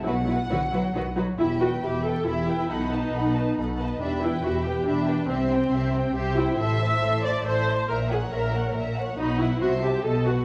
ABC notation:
X:1
M:3/4
L:1/8
Q:1/4=138
K:Em
V:1 name="Violin section"
f4- f z | b g b g b g | b a b a b a | b g b g b g |
c' g c' g c' g | c' a c' a c' a | ^a f a f a f | b f c' a a f |]
V:2 name="Violin section"
[FB] [FB] [FB] [FB] [FB] [FB] | [Ge] [Bg] [Ge] [Bg] [Ge] [Bg] | [Af] [B^d] [Af] [Bd] [Af] [Bd] | [Ge] [Bg] [Ge] [Bg] [Ge] [Bg] |
[Ge] [cg] [Ge] [cg] [Ge] [cg] | [Ae] c [Ae] c [Ae] c | [^Ae] [^cf] [Ae] [cf] [Ae] [cf] | [F^d] [Bf] [ce] [ce] [Ad] [Bf] |]
V:3 name="Viola section"
[F,E] [F,E] [F,E] [F,E] [F,^D] [F,D] | E F G A E2 | ^D4- D z | D E F G D2 |
C4 G E | e3 d c2 | ^A ^G A2 z2 | ^D E F G A F |]
V:4 name="Cello section" clef=bass
B,,2 D, F, ^D, F, | E,,2 E,,2 E,,2 | B,,2 B,,2 B,,2 | E,,2 E,,2 E,,2 |
C,2 C,2 C,2 | A,,2 A,,2 A,,2 | ^A,,2 A,,2 A,,2 | B,,2 C,2 B,,2 |]
V:5 name="Double bass section" clef=bass
B,,,2 B,,,2 B,,,2 | E,,,2 E,,,2 E,,,2 | B,,,2 B,,,2 B,,,2 | E,,,2 E,,,2 E,,,2 |
C,,2 C,,2 C,,2 | A,,,2 A,,,2 A,,,2 | ^A,,,2 A,,,2 A,,,2 | B,,,2 C,,2 B,,,2 |]